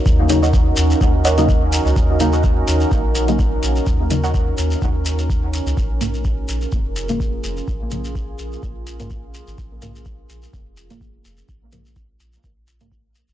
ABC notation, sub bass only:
X:1
M:4/4
L:1/16
Q:"Swing 16ths" 1/4=126
K:Ebm
V:1 name="Sub bass" clef=bass
E,,6 E,, z E,,6- E,, D,, | E,,6 E,, z B,,,6 B,,, z | E,,6 E,, z E,,6- E,, D,, | B,,,6 B,,, z F,,,6 F,,, z |
B,,,6 B,,, z B,,,6- B,,, A,,, | B,,,6 B,,, z F,,,6 F,,, z | B,,,6 B,,, z B,,,6- B,,, A,,, |]